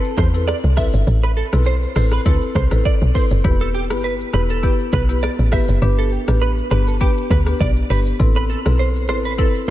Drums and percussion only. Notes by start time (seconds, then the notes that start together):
0.04 shaker
0.18 kick, cross-stick, shaker
0.34 shaker
0.48 cross-stick, shaker
0.64 shaker
0.77 kick, cross-stick, open hi-hat, shaker
0.93 shaker
1.07 shaker
1.23 shaker
1.37 shaker
1.53 cross-stick, shaker
1.66 shaker
1.83 shaker
1.96 cross-stick, open hi-hat, shaker
2.11 cross-stick, shaker
2.26 kick, shaker
2.42 shaker
2.55 kick, cross-stick, shaker
2.71 cross-stick, shaker
2.85 kick, shaker
3.01 shaker
3.15 kick, open hi-hat, shaker
3.31 shaker
3.45 kick, shaker
3.61 shaker
3.74 shaker
3.90 cross-stick, shaker
4.04 shaker
4.20 shaker
4.33 cross-stick, shaker
4.50 shaker
4.63 kick, shaker
4.80 shaker
4.93 kick, cross-stick, shaker
5.10 shaker
5.23 cross-stick, shaker
5.39 shaker
5.52 kick, cross-stick, open hi-hat, shaker
5.68 shaker
5.82 shaker
5.98 shaker
6.12 shaker
6.28 cross-stick, shaker
6.41 shaker
6.58 shaker
6.71 cross-stick, shaker
6.87 shaker
7.01 kick, shaker
7.17 shaker
7.30 kick, cross-stick, shaker
7.46 cross-stick, shaker
7.60 kick, shaker
7.77 shaker
7.91 open hi-hat, shaker
8.06 shaker
8.20 kick, shaker
8.36 shaker
8.50 shaker
8.66 cross-stick, shaker
8.79 shaker
8.96 shaker
9.09 cross-stick, shaker
9.25 shaker
9.39 kick, shaker
9.55 shaker